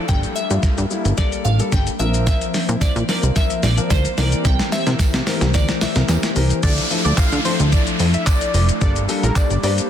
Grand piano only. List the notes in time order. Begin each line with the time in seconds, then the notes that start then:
0.09 G3 A#3 A4
0.50 G3 A#3 F4
0.90 G3 A#3 E4
1.18 G3 A#3 A4
1.59 G3 A#3 A4
1.99 F3 C4 A#4
2.68 F3 C4 E4
3.08 F3 C4 A#4
3.36 F3 C4 A#4
3.77 F3 C4 A#4
4.17 E3 C4 A#4
4.86 E3 C4 A#4
5.27 E3 C4 A#4
5.54 E3 C4 A#4
5.96 E3 C4 A#4
6.36 E3 C4 A#4
6.63 F3 D4 E4 A4
6.90 F3 D4 E4 A4
7.45 F3 D4 E4 A4
8.81 G3 A#3 D4 A4
9.08 G3 A#3 D4 A4
9.63 G3 A#3 D4 C5